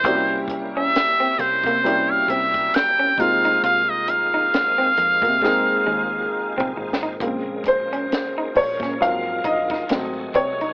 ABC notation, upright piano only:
X:1
M:4/4
L:1/8
Q:"Swing 16ths" 1/4=67
K:Bbm
V:1 name="Upright piano"
[=G,B,D=E_G=G]3 z [G,B,DEG]3 [A,B,C_EF]- | [A,B,CEF]2 z2 [A,B,CEA]3 z | z c2 d f e2 d |]
V:2 name="Upright piano" clef=bass
z8 | z8 | [D,A,C]3 z [F,G,B,C] z [G,=A,C] z |]